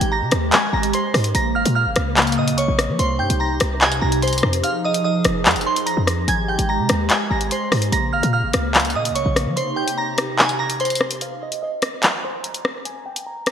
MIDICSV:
0, 0, Header, 1, 6, 480
1, 0, Start_track
1, 0, Tempo, 410959
1, 1573, Time_signature, 4, 2, 24, 8
1, 15786, End_track
2, 0, Start_track
2, 0, Title_t, "Synth bell"
2, 0, Program_c, 0, 98
2, 136, Note_on_c, 0, 82, 84
2, 146, Note_on_c, 0, 94, 62
2, 586, Note_off_c, 0, 82, 0
2, 591, Note_off_c, 0, 94, 0
2, 621, Note_on_c, 0, 80, 95
2, 630, Note_on_c, 0, 92, 72
2, 804, Note_off_c, 0, 80, 0
2, 810, Note_off_c, 0, 92, 0
2, 855, Note_on_c, 0, 82, 85
2, 865, Note_on_c, 0, 94, 61
2, 1041, Note_off_c, 0, 82, 0
2, 1047, Note_off_c, 0, 94, 0
2, 1097, Note_on_c, 0, 84, 85
2, 1106, Note_on_c, 0, 72, 70
2, 1546, Note_off_c, 0, 84, 0
2, 1551, Note_off_c, 0, 72, 0
2, 1573, Note_on_c, 0, 82, 89
2, 1583, Note_on_c, 0, 94, 68
2, 1760, Note_off_c, 0, 82, 0
2, 1766, Note_off_c, 0, 94, 0
2, 1812, Note_on_c, 0, 89, 79
2, 1822, Note_on_c, 0, 77, 65
2, 1999, Note_off_c, 0, 89, 0
2, 2005, Note_off_c, 0, 77, 0
2, 2048, Note_on_c, 0, 89, 86
2, 2058, Note_on_c, 0, 77, 65
2, 2728, Note_off_c, 0, 89, 0
2, 2733, Note_off_c, 0, 77, 0
2, 2778, Note_on_c, 0, 87, 78
2, 2789, Note_on_c, 0, 75, 61
2, 2963, Note_off_c, 0, 87, 0
2, 2969, Note_off_c, 0, 75, 0
2, 3008, Note_on_c, 0, 85, 85
2, 3018, Note_on_c, 0, 73, 67
2, 3462, Note_off_c, 0, 85, 0
2, 3467, Note_off_c, 0, 73, 0
2, 3492, Note_on_c, 0, 84, 90
2, 3500, Note_on_c, 0, 72, 67
2, 3679, Note_off_c, 0, 84, 0
2, 3684, Note_off_c, 0, 72, 0
2, 3726, Note_on_c, 0, 79, 82
2, 3735, Note_on_c, 0, 91, 59
2, 3915, Note_off_c, 0, 79, 0
2, 3921, Note_off_c, 0, 91, 0
2, 3971, Note_on_c, 0, 82, 77
2, 3980, Note_on_c, 0, 94, 62
2, 4423, Note_off_c, 0, 82, 0
2, 4428, Note_off_c, 0, 94, 0
2, 4450, Note_on_c, 0, 80, 97
2, 4460, Note_on_c, 0, 92, 68
2, 4638, Note_off_c, 0, 80, 0
2, 4644, Note_off_c, 0, 92, 0
2, 4689, Note_on_c, 0, 82, 79
2, 4700, Note_on_c, 0, 94, 64
2, 4877, Note_off_c, 0, 82, 0
2, 4884, Note_off_c, 0, 94, 0
2, 4934, Note_on_c, 0, 84, 84
2, 4944, Note_on_c, 0, 72, 69
2, 5385, Note_off_c, 0, 84, 0
2, 5390, Note_off_c, 0, 72, 0
2, 5413, Note_on_c, 0, 89, 88
2, 5422, Note_on_c, 0, 77, 68
2, 5600, Note_off_c, 0, 89, 0
2, 5605, Note_off_c, 0, 77, 0
2, 5659, Note_on_c, 0, 87, 81
2, 5668, Note_on_c, 0, 75, 71
2, 5843, Note_off_c, 0, 87, 0
2, 5849, Note_off_c, 0, 75, 0
2, 5892, Note_on_c, 0, 87, 88
2, 5901, Note_on_c, 0, 75, 62
2, 6569, Note_off_c, 0, 87, 0
2, 6574, Note_off_c, 0, 75, 0
2, 6617, Note_on_c, 0, 84, 89
2, 6625, Note_on_c, 0, 72, 67
2, 6802, Note_off_c, 0, 84, 0
2, 6807, Note_off_c, 0, 72, 0
2, 6847, Note_on_c, 0, 82, 87
2, 6856, Note_on_c, 0, 94, 70
2, 7301, Note_off_c, 0, 82, 0
2, 7306, Note_off_c, 0, 94, 0
2, 7334, Note_on_c, 0, 80, 81
2, 7343, Note_on_c, 0, 92, 70
2, 7520, Note_off_c, 0, 80, 0
2, 7526, Note_off_c, 0, 92, 0
2, 7573, Note_on_c, 0, 79, 77
2, 7583, Note_on_c, 0, 91, 60
2, 7760, Note_off_c, 0, 79, 0
2, 7766, Note_off_c, 0, 91, 0
2, 7813, Note_on_c, 0, 82, 86
2, 7823, Note_on_c, 0, 94, 63
2, 8264, Note_off_c, 0, 82, 0
2, 8270, Note_off_c, 0, 94, 0
2, 8300, Note_on_c, 0, 80, 94
2, 8309, Note_on_c, 0, 92, 73
2, 8484, Note_off_c, 0, 80, 0
2, 8490, Note_off_c, 0, 92, 0
2, 8535, Note_on_c, 0, 82, 85
2, 8544, Note_on_c, 0, 94, 60
2, 8721, Note_off_c, 0, 82, 0
2, 8727, Note_off_c, 0, 94, 0
2, 8777, Note_on_c, 0, 84, 85
2, 8785, Note_on_c, 0, 72, 70
2, 9226, Note_off_c, 0, 84, 0
2, 9231, Note_off_c, 0, 72, 0
2, 9254, Note_on_c, 0, 82, 85
2, 9263, Note_on_c, 0, 94, 68
2, 9440, Note_off_c, 0, 82, 0
2, 9446, Note_off_c, 0, 94, 0
2, 9492, Note_on_c, 0, 89, 83
2, 9502, Note_on_c, 0, 77, 64
2, 9679, Note_off_c, 0, 89, 0
2, 9685, Note_off_c, 0, 77, 0
2, 9730, Note_on_c, 0, 89, 87
2, 9739, Note_on_c, 0, 77, 68
2, 10409, Note_off_c, 0, 89, 0
2, 10413, Note_off_c, 0, 77, 0
2, 10459, Note_on_c, 0, 87, 78
2, 10468, Note_on_c, 0, 75, 61
2, 10644, Note_off_c, 0, 87, 0
2, 10649, Note_off_c, 0, 75, 0
2, 10687, Note_on_c, 0, 85, 85
2, 10696, Note_on_c, 0, 73, 64
2, 11141, Note_off_c, 0, 85, 0
2, 11146, Note_off_c, 0, 73, 0
2, 11171, Note_on_c, 0, 84, 87
2, 11181, Note_on_c, 0, 72, 68
2, 11359, Note_off_c, 0, 84, 0
2, 11364, Note_off_c, 0, 72, 0
2, 11404, Note_on_c, 0, 79, 83
2, 11413, Note_on_c, 0, 91, 60
2, 11594, Note_off_c, 0, 79, 0
2, 11600, Note_off_c, 0, 91, 0
2, 11652, Note_on_c, 0, 82, 81
2, 11661, Note_on_c, 0, 94, 63
2, 12104, Note_off_c, 0, 82, 0
2, 12109, Note_off_c, 0, 94, 0
2, 12131, Note_on_c, 0, 80, 95
2, 12141, Note_on_c, 0, 92, 68
2, 12318, Note_off_c, 0, 80, 0
2, 12324, Note_off_c, 0, 92, 0
2, 12370, Note_on_c, 0, 82, 80
2, 12379, Note_on_c, 0, 94, 65
2, 12558, Note_off_c, 0, 82, 0
2, 12563, Note_off_c, 0, 94, 0
2, 12614, Note_on_c, 0, 84, 84
2, 12623, Note_on_c, 0, 72, 69
2, 13065, Note_off_c, 0, 84, 0
2, 13070, Note_off_c, 0, 72, 0
2, 13094, Note_on_c, 0, 89, 86
2, 13103, Note_on_c, 0, 77, 68
2, 13280, Note_off_c, 0, 89, 0
2, 13286, Note_off_c, 0, 77, 0
2, 13338, Note_on_c, 0, 87, 76
2, 13348, Note_on_c, 0, 75, 66
2, 13523, Note_off_c, 0, 87, 0
2, 13529, Note_off_c, 0, 75, 0
2, 13571, Note_on_c, 0, 87, 86
2, 13581, Note_on_c, 0, 75, 63
2, 14249, Note_off_c, 0, 87, 0
2, 14254, Note_off_c, 0, 75, 0
2, 14294, Note_on_c, 0, 84, 85
2, 14302, Note_on_c, 0, 72, 65
2, 14480, Note_off_c, 0, 84, 0
2, 14485, Note_off_c, 0, 72, 0
2, 14524, Note_on_c, 0, 82, 85
2, 14532, Note_on_c, 0, 94, 69
2, 14980, Note_off_c, 0, 82, 0
2, 14984, Note_off_c, 0, 94, 0
2, 15013, Note_on_c, 0, 80, 78
2, 15022, Note_on_c, 0, 92, 66
2, 15200, Note_off_c, 0, 80, 0
2, 15205, Note_off_c, 0, 92, 0
2, 15250, Note_on_c, 0, 79, 74
2, 15260, Note_on_c, 0, 91, 58
2, 15438, Note_off_c, 0, 79, 0
2, 15444, Note_off_c, 0, 91, 0
2, 15494, Note_on_c, 0, 82, 81
2, 15503, Note_on_c, 0, 94, 59
2, 15786, Note_off_c, 0, 82, 0
2, 15786, Note_off_c, 0, 94, 0
2, 15786, End_track
3, 0, Start_track
3, 0, Title_t, "Analog synth pad"
3, 0, Program_c, 1, 89
3, 0, Note_on_c, 1, 56, 87
3, 0, Note_on_c, 1, 67, 96
3, 1554, Note_off_c, 1, 56, 0
3, 1555, Note_off_c, 1, 67, 0
3, 1575, Note_on_c, 1, 49, 89
3, 1576, Note_on_c, 1, 58, 83
3, 3475, Note_off_c, 1, 49, 0
3, 3476, Note_off_c, 1, 58, 0
3, 3493, Note_on_c, 1, 67, 96
3, 3494, Note_on_c, 1, 48, 85
3, 3494, Note_on_c, 1, 63, 82
3, 5394, Note_off_c, 1, 48, 0
3, 5394, Note_off_c, 1, 67, 0
3, 5413, Note_on_c, 1, 53, 88
3, 5413, Note_on_c, 1, 68, 96
3, 7295, Note_off_c, 1, 63, 0
3, 7314, Note_off_c, 1, 53, 0
3, 7314, Note_off_c, 1, 68, 0
3, 7335, Note_on_c, 1, 56, 87
3, 7336, Note_on_c, 1, 67, 95
3, 9235, Note_off_c, 1, 56, 0
3, 9235, Note_off_c, 1, 67, 0
3, 9256, Note_on_c, 1, 49, 88
3, 9256, Note_on_c, 1, 58, 81
3, 11155, Note_off_c, 1, 49, 0
3, 11156, Note_off_c, 1, 58, 0
3, 11173, Note_on_c, 1, 63, 80
3, 11174, Note_on_c, 1, 48, 85
3, 11175, Note_on_c, 1, 67, 94
3, 13074, Note_off_c, 1, 63, 0
3, 13075, Note_off_c, 1, 48, 0
3, 13075, Note_off_c, 1, 67, 0
3, 15786, End_track
4, 0, Start_track
4, 0, Title_t, "808-style bass"
4, 0, Program_c, 2, 38
4, 13, Note_on_c, 2, 32, 113
4, 253, Note_on_c, 2, 48, 97
4, 271, Note_off_c, 2, 32, 0
4, 368, Note_off_c, 2, 48, 0
4, 374, Note_on_c, 2, 39, 105
4, 604, Note_off_c, 2, 39, 0
4, 853, Note_on_c, 2, 32, 103
4, 1084, Note_off_c, 2, 32, 0
4, 1333, Note_on_c, 2, 44, 107
4, 1564, Note_off_c, 2, 44, 0
4, 1574, Note_on_c, 2, 34, 106
4, 1814, Note_on_c, 2, 32, 107
4, 1831, Note_off_c, 2, 34, 0
4, 1928, Note_off_c, 2, 32, 0
4, 1934, Note_on_c, 2, 46, 112
4, 2174, Note_on_c, 2, 32, 96
4, 2191, Note_off_c, 2, 46, 0
4, 2288, Note_off_c, 2, 32, 0
4, 2294, Note_on_c, 2, 37, 106
4, 2774, Note_on_c, 2, 46, 102
4, 2792, Note_off_c, 2, 37, 0
4, 2955, Note_on_c, 2, 37, 97
4, 2973, Note_off_c, 2, 46, 0
4, 3125, Note_off_c, 2, 37, 0
4, 3134, Note_on_c, 2, 34, 105
4, 3375, Note_on_c, 2, 53, 99
4, 3392, Note_off_c, 2, 34, 0
4, 3488, Note_off_c, 2, 53, 0
4, 3494, Note_on_c, 2, 36, 106
4, 3734, Note_on_c, 2, 43, 102
4, 3751, Note_off_c, 2, 36, 0
4, 3848, Note_off_c, 2, 43, 0
4, 3854, Note_on_c, 2, 36, 111
4, 4200, Note_off_c, 2, 36, 0
4, 4215, Note_on_c, 2, 36, 104
4, 4675, Note_off_c, 2, 36, 0
4, 4694, Note_on_c, 2, 36, 107
4, 5155, Note_off_c, 2, 36, 0
4, 5174, Note_on_c, 2, 41, 104
4, 5404, Note_off_c, 2, 41, 0
4, 6133, Note_on_c, 2, 29, 112
4, 6373, Note_on_c, 2, 41, 101
4, 6391, Note_off_c, 2, 29, 0
4, 6493, Note_on_c, 2, 29, 98
4, 6511, Note_off_c, 2, 41, 0
4, 6608, Note_off_c, 2, 29, 0
4, 6974, Note_on_c, 2, 41, 104
4, 7319, Note_off_c, 2, 41, 0
4, 7333, Note_on_c, 2, 32, 110
4, 7679, Note_off_c, 2, 32, 0
4, 7694, Note_on_c, 2, 32, 111
4, 7934, Note_on_c, 2, 48, 96
4, 7952, Note_off_c, 2, 32, 0
4, 8048, Note_off_c, 2, 48, 0
4, 8054, Note_on_c, 2, 39, 108
4, 8284, Note_off_c, 2, 39, 0
4, 8534, Note_on_c, 2, 32, 104
4, 8764, Note_off_c, 2, 32, 0
4, 9014, Note_on_c, 2, 44, 106
4, 9244, Note_off_c, 2, 44, 0
4, 9254, Note_on_c, 2, 34, 109
4, 9493, Note_on_c, 2, 32, 106
4, 9510, Note_off_c, 2, 34, 0
4, 9607, Note_off_c, 2, 32, 0
4, 9613, Note_on_c, 2, 46, 114
4, 9853, Note_on_c, 2, 32, 95
4, 9870, Note_off_c, 2, 46, 0
4, 9967, Note_off_c, 2, 32, 0
4, 9973, Note_on_c, 2, 37, 112
4, 10452, Note_on_c, 2, 46, 100
4, 10470, Note_off_c, 2, 37, 0
4, 10633, Note_on_c, 2, 37, 102
4, 10650, Note_off_c, 2, 46, 0
4, 10804, Note_off_c, 2, 37, 0
4, 10813, Note_on_c, 2, 34, 112
4, 11053, Note_on_c, 2, 53, 97
4, 11070, Note_off_c, 2, 34, 0
4, 11167, Note_off_c, 2, 53, 0
4, 15786, End_track
5, 0, Start_track
5, 0, Title_t, "Downlifter"
5, 0, Program_c, 3, 103
5, 0, Note_on_c, 3, 60, 89
5, 1574, Note_off_c, 3, 60, 0
5, 15786, End_track
6, 0, Start_track
6, 0, Title_t, "Drums"
6, 15, Note_on_c, 9, 42, 78
6, 131, Note_off_c, 9, 42, 0
6, 367, Note_on_c, 9, 42, 80
6, 374, Note_on_c, 9, 37, 100
6, 484, Note_off_c, 9, 42, 0
6, 490, Note_off_c, 9, 37, 0
6, 608, Note_on_c, 9, 42, 71
6, 614, Note_on_c, 9, 39, 114
6, 725, Note_off_c, 9, 42, 0
6, 731, Note_off_c, 9, 39, 0
6, 973, Note_on_c, 9, 42, 84
6, 1090, Note_off_c, 9, 42, 0
6, 1092, Note_on_c, 9, 42, 76
6, 1209, Note_off_c, 9, 42, 0
6, 1334, Note_on_c, 9, 37, 96
6, 1337, Note_on_c, 9, 46, 57
6, 1450, Note_on_c, 9, 42, 86
6, 1451, Note_off_c, 9, 37, 0
6, 1454, Note_off_c, 9, 46, 0
6, 1567, Note_off_c, 9, 42, 0
6, 1573, Note_on_c, 9, 42, 73
6, 1690, Note_off_c, 9, 42, 0
6, 1933, Note_on_c, 9, 42, 80
6, 2050, Note_off_c, 9, 42, 0
6, 2286, Note_on_c, 9, 42, 80
6, 2292, Note_on_c, 9, 37, 103
6, 2402, Note_off_c, 9, 42, 0
6, 2409, Note_off_c, 9, 37, 0
6, 2531, Note_on_c, 9, 39, 115
6, 2532, Note_on_c, 9, 42, 63
6, 2592, Note_off_c, 9, 42, 0
6, 2592, Note_on_c, 9, 42, 61
6, 2648, Note_off_c, 9, 39, 0
6, 2653, Note_off_c, 9, 42, 0
6, 2653, Note_on_c, 9, 42, 62
6, 2713, Note_off_c, 9, 42, 0
6, 2713, Note_on_c, 9, 42, 62
6, 2829, Note_off_c, 9, 42, 0
6, 2892, Note_on_c, 9, 42, 81
6, 3009, Note_off_c, 9, 42, 0
6, 3011, Note_on_c, 9, 42, 85
6, 3128, Note_off_c, 9, 42, 0
6, 3254, Note_on_c, 9, 37, 96
6, 3257, Note_on_c, 9, 42, 79
6, 3371, Note_off_c, 9, 37, 0
6, 3374, Note_off_c, 9, 42, 0
6, 3495, Note_on_c, 9, 42, 75
6, 3612, Note_off_c, 9, 42, 0
6, 3854, Note_on_c, 9, 42, 80
6, 3971, Note_off_c, 9, 42, 0
6, 4207, Note_on_c, 9, 42, 82
6, 4213, Note_on_c, 9, 37, 99
6, 4324, Note_off_c, 9, 42, 0
6, 4330, Note_off_c, 9, 37, 0
6, 4453, Note_on_c, 9, 39, 111
6, 4453, Note_on_c, 9, 42, 44
6, 4569, Note_off_c, 9, 39, 0
6, 4570, Note_off_c, 9, 42, 0
6, 4574, Note_on_c, 9, 42, 75
6, 4691, Note_off_c, 9, 42, 0
6, 4813, Note_on_c, 9, 42, 84
6, 4930, Note_off_c, 9, 42, 0
6, 4934, Note_on_c, 9, 42, 50
6, 4994, Note_off_c, 9, 42, 0
6, 4994, Note_on_c, 9, 42, 59
6, 5054, Note_off_c, 9, 42, 0
6, 5054, Note_on_c, 9, 42, 77
6, 5114, Note_off_c, 9, 42, 0
6, 5114, Note_on_c, 9, 42, 89
6, 5175, Note_on_c, 9, 37, 93
6, 5231, Note_off_c, 9, 42, 0
6, 5292, Note_off_c, 9, 37, 0
6, 5292, Note_on_c, 9, 42, 87
6, 5409, Note_off_c, 9, 42, 0
6, 5415, Note_on_c, 9, 42, 73
6, 5532, Note_off_c, 9, 42, 0
6, 5775, Note_on_c, 9, 42, 78
6, 5892, Note_off_c, 9, 42, 0
6, 6126, Note_on_c, 9, 42, 82
6, 6133, Note_on_c, 9, 37, 105
6, 6243, Note_off_c, 9, 42, 0
6, 6249, Note_off_c, 9, 37, 0
6, 6372, Note_on_c, 9, 39, 112
6, 6373, Note_on_c, 9, 42, 63
6, 6433, Note_off_c, 9, 42, 0
6, 6433, Note_on_c, 9, 42, 60
6, 6489, Note_off_c, 9, 39, 0
6, 6493, Note_off_c, 9, 42, 0
6, 6493, Note_on_c, 9, 42, 60
6, 6553, Note_off_c, 9, 42, 0
6, 6553, Note_on_c, 9, 42, 60
6, 6670, Note_off_c, 9, 42, 0
6, 6732, Note_on_c, 9, 42, 82
6, 6849, Note_off_c, 9, 42, 0
6, 6852, Note_on_c, 9, 42, 85
6, 6969, Note_off_c, 9, 42, 0
6, 7094, Note_on_c, 9, 37, 92
6, 7097, Note_on_c, 9, 42, 78
6, 7211, Note_off_c, 9, 37, 0
6, 7214, Note_off_c, 9, 42, 0
6, 7335, Note_on_c, 9, 42, 71
6, 7452, Note_off_c, 9, 42, 0
6, 7695, Note_on_c, 9, 42, 77
6, 7811, Note_off_c, 9, 42, 0
6, 8048, Note_on_c, 9, 42, 85
6, 8054, Note_on_c, 9, 37, 106
6, 8164, Note_off_c, 9, 42, 0
6, 8171, Note_off_c, 9, 37, 0
6, 8287, Note_on_c, 9, 42, 73
6, 8293, Note_on_c, 9, 39, 113
6, 8404, Note_off_c, 9, 42, 0
6, 8410, Note_off_c, 9, 39, 0
6, 8653, Note_on_c, 9, 42, 82
6, 8769, Note_off_c, 9, 42, 0
6, 8772, Note_on_c, 9, 42, 76
6, 8889, Note_off_c, 9, 42, 0
6, 9015, Note_on_c, 9, 37, 97
6, 9018, Note_on_c, 9, 46, 58
6, 9132, Note_off_c, 9, 37, 0
6, 9132, Note_on_c, 9, 42, 86
6, 9135, Note_off_c, 9, 46, 0
6, 9249, Note_off_c, 9, 42, 0
6, 9256, Note_on_c, 9, 42, 75
6, 9373, Note_off_c, 9, 42, 0
6, 9616, Note_on_c, 9, 42, 80
6, 9733, Note_off_c, 9, 42, 0
6, 9968, Note_on_c, 9, 42, 82
6, 9974, Note_on_c, 9, 37, 105
6, 10085, Note_off_c, 9, 42, 0
6, 10091, Note_off_c, 9, 37, 0
6, 10214, Note_on_c, 9, 39, 112
6, 10215, Note_on_c, 9, 42, 62
6, 10275, Note_off_c, 9, 42, 0
6, 10275, Note_on_c, 9, 42, 61
6, 10331, Note_off_c, 9, 39, 0
6, 10335, Note_off_c, 9, 42, 0
6, 10335, Note_on_c, 9, 42, 60
6, 10395, Note_off_c, 9, 42, 0
6, 10395, Note_on_c, 9, 42, 62
6, 10512, Note_off_c, 9, 42, 0
6, 10574, Note_on_c, 9, 42, 82
6, 10690, Note_off_c, 9, 42, 0
6, 10694, Note_on_c, 9, 42, 83
6, 10811, Note_off_c, 9, 42, 0
6, 10936, Note_on_c, 9, 37, 94
6, 10939, Note_on_c, 9, 42, 79
6, 11053, Note_off_c, 9, 37, 0
6, 11056, Note_off_c, 9, 42, 0
6, 11177, Note_on_c, 9, 42, 71
6, 11293, Note_off_c, 9, 42, 0
6, 11535, Note_on_c, 9, 42, 78
6, 11652, Note_off_c, 9, 42, 0
6, 11888, Note_on_c, 9, 42, 79
6, 11894, Note_on_c, 9, 37, 104
6, 12004, Note_off_c, 9, 42, 0
6, 12011, Note_off_c, 9, 37, 0
6, 12133, Note_on_c, 9, 39, 115
6, 12134, Note_on_c, 9, 42, 45
6, 12250, Note_off_c, 9, 39, 0
6, 12251, Note_off_c, 9, 42, 0
6, 12254, Note_on_c, 9, 42, 72
6, 12371, Note_off_c, 9, 42, 0
6, 12493, Note_on_c, 9, 42, 79
6, 12610, Note_off_c, 9, 42, 0
6, 12614, Note_on_c, 9, 42, 47
6, 12675, Note_off_c, 9, 42, 0
6, 12675, Note_on_c, 9, 42, 58
6, 12734, Note_off_c, 9, 42, 0
6, 12734, Note_on_c, 9, 42, 77
6, 12795, Note_off_c, 9, 42, 0
6, 12795, Note_on_c, 9, 42, 88
6, 12855, Note_on_c, 9, 37, 94
6, 12911, Note_off_c, 9, 42, 0
6, 12972, Note_off_c, 9, 37, 0
6, 12972, Note_on_c, 9, 42, 88
6, 13089, Note_off_c, 9, 42, 0
6, 13096, Note_on_c, 9, 42, 69
6, 13212, Note_off_c, 9, 42, 0
6, 13454, Note_on_c, 9, 42, 78
6, 13571, Note_off_c, 9, 42, 0
6, 13806, Note_on_c, 9, 42, 73
6, 13813, Note_on_c, 9, 37, 97
6, 13923, Note_off_c, 9, 42, 0
6, 13929, Note_off_c, 9, 37, 0
6, 14046, Note_on_c, 9, 42, 77
6, 14052, Note_on_c, 9, 39, 109
6, 14163, Note_off_c, 9, 42, 0
6, 14169, Note_off_c, 9, 39, 0
6, 14531, Note_on_c, 9, 42, 82
6, 14648, Note_off_c, 9, 42, 0
6, 14652, Note_on_c, 9, 42, 69
6, 14769, Note_off_c, 9, 42, 0
6, 14774, Note_on_c, 9, 37, 92
6, 14891, Note_off_c, 9, 37, 0
6, 15014, Note_on_c, 9, 42, 69
6, 15131, Note_off_c, 9, 42, 0
6, 15373, Note_on_c, 9, 42, 77
6, 15490, Note_off_c, 9, 42, 0
6, 15725, Note_on_c, 9, 42, 72
6, 15732, Note_on_c, 9, 37, 100
6, 15786, Note_off_c, 9, 37, 0
6, 15786, Note_off_c, 9, 42, 0
6, 15786, End_track
0, 0, End_of_file